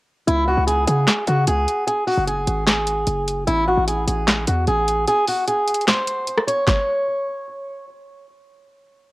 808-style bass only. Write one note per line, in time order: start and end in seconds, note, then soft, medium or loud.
0.27 0.56 C#2 loud
0.57 0.86 C#2 loud
0.87 1.07 C#3 loud
1.27 1.47 C#3 loud
1.48 1.67 C#2 loud
2.18 2.46 F#1 loud
2.48 3.05 G#1 loud
3.07 3.46 F#1 loud
3.48 3.76 A1 loud
3.77 4.06 A1 loud
4.08 4.46 A1 loud
4.48 4.67 E2 loud
4.68 5.06 A1 loud